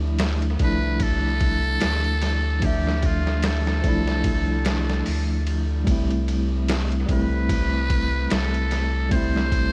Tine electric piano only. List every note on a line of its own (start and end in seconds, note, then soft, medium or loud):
0.00 0.55 F3 medium
0.00 0.56 A3 medium
0.00 0.58 D4 medium
0.00 0.59 E4 medium
0.57 2.58 F3 medium
0.57 2.59 A3 medium
0.62 2.60 D4 medium
0.62 2.61 E4 medium
2.60 3.79 F3 medium
2.60 3.80 A3 medium
2.65 3.81 D4 medium
2.65 3.82 E5 medium
3.82 5.82 F3 medium
3.82 5.83 A3 medium
3.86 5.84 D4 medium
3.86 5.85 E4 loud
5.84 7.03 G3 medium
5.84 7.05 A3 medium
5.90 7.06 C4 medium
5.90 7.07 E4 medium
7.06 9.06 G3 medium
7.06 9.07 A3 medium
7.10 9.08 C4 medium
7.10 9.10 E4 medium
9.09 9.72 G3 medium
9.09 9.72 A3 medium
9.13 9.72 C4 medium
9.13 9.72 E4 medium